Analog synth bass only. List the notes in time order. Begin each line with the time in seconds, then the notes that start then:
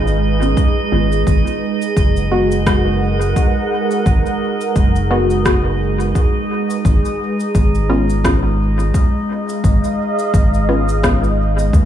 Already playing: G#1
0.92 G#1
1.27 G#1
1.97 F#1
4.06 G#1
4.76 F#1
6.85 G#1
7.55 G#1
9.64 G#1
10.34 G#1
11.73 D#2